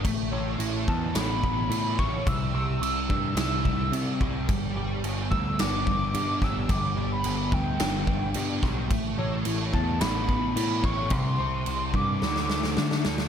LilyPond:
<<
  \new Staff \with { instrumentName = "Soft synth lead" } { \time 4/4 \key g \major \tempo 4 = 109 r4. a''8 b''4. cis'''8 | e'''4 e'''4 e'''4. r8 | r4. e'''8 d'''8. d'''8. e'''8 | d'''8. b''8. g''2 r8 |
r4. a''8 b''4. cis'''8 | c'''4. d'''2 r8 | }
  \new Staff \with { instrumentName = "Distorted electric guitar" } { \time 4/4 \key g \major a8 cis''8 e'8 b8 a'8 b8 e'8 cis''8 | c8 g'8 c'8 g8 e'8 g8 c'8 g'8 | g8 g'8 b8 g8 d'8 g8 b8 g'8 | g8 g'8 b8 g8 d'8 g8 b8 g'8 |
a8 cis''8 e'8 b8 a'8 b8 e'8 cis''8 | c8 c''8 c'8 g8 d8 a8 d'8 a'8 | }
  \new Staff \with { instrumentName = "Picked electric bass" } { \clef bass \time 4/4 \key g \major a,,8 a,,8 a,,8 e,8 a,,4 a,8 a,,8 | c,8 c,8 c,8 g,8 c,4 c8 c,8 | g,,8 g,,8 g,,8 d,8 g,,4 g,8 g,,8 | g,,8 g,,8 g,,8 d,8 g,,4 g,8 b,,8 |
a,,8 a,,8 a,,8 e,8 a,,4 a,8 a,,8 | c,8 c,8 c,8 g,8 d,4 d8 d,8 | }
  \new DrumStaff \with { instrumentName = "Drums" } \drummode { \time 4/4 <cymc bd>4 cymc8 bd8 <cymc sn>8 bd8 cymc8 bd8 | <cymc bd>4 cymc8 bd8 <cymc sn>8 bd8 cymc8 bd8 | <cymc bd>4 cymc8 bd8 <cymc sn>8 bd8 cymc8 <bd sn>8 | <cymc bd>4 cymc8 bd8 <cymc sn>8 bd8 cymc8 <bd sn>8 |
<cymc bd>4 cymc8 bd8 <cymc sn>8 bd8 cymc8 bd8 | <cymc bd>4 cymc8 bd8 sn16 sn16 sn16 sn16 sn16 sn16 sn16 sn16 | }
>>